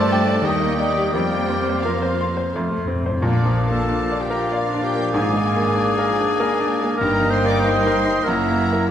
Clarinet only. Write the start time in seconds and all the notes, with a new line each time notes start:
Already playing: A4
0.45 G4
1.11 G4
1.82 F4
3.20 D4
3.71 A4
4.21 G4
4.50 F4
4.82 G4
5.13 G#4
6.97 A#4
7.30 C5
7.46 D5
7.60 C5
8.24 A#4